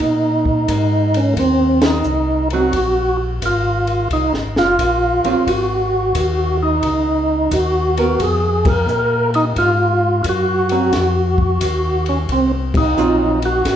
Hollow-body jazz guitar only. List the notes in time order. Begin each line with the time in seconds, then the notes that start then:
2.53 F#3 C4
5.24 F#3 C4 F4
7.98 B3 A#4
10.71 F#3 C4
12.97 F#3 C4 F4